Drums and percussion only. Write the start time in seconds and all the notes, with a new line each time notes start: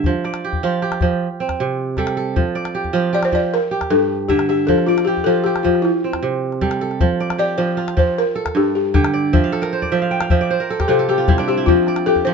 0.04 calabash thump
0.24 calabash click
0.34 calabash click
0.53 calabash thump
0.82 calabash click
0.92 calabash click
1.01 calabash thump
1.49 calabash thump, calabash click
1.97 calabash thump, calabash click
2.07 calabash click
2.36 calabash thump
2.56 calabash click
2.65 calabash click
2.84 calabash thump
3.14 calabash click
3.23 calabash click
3.32 calabash thump
3.81 calabash thump, calabash click
4.29 calabash thump, calabash click
4.39 calabash click
4.68 calabash thump
4.78 calabash click
4.88 calabash click
4.98 calabash click
5.17 calabash thump
5.28 calabash click
5.56 calabash click
5.65 calabash thump
5.75 calabash click
5.85 calabash click
6.13 calabash thump, calabash click
6.52 calabash click
6.61 calabash thump, calabash click
6.71 calabash click
6.91 calabash click
7.00 calabash thump
7.21 calabash click
7.30 calabash click
7.78 calabash click
7.88 calabash click
7.97 calabash thump
8.46 calabash thump, calabash click
8.94 calabash thump, calabash click
9.04 calabash click
9.34 calabash thump
9.53 calabash click
9.63 calabash click
9.82 calabash thump
10.12 calabash click
10.21 calabash click
10.30 calabash thump
10.80 calabash thump, calabash click
11.28 calabash thump, calabash click
11.38 calabash click
11.67 calabash thump
11.87 calabash click
11.96 calabash click
12.16 calabash thump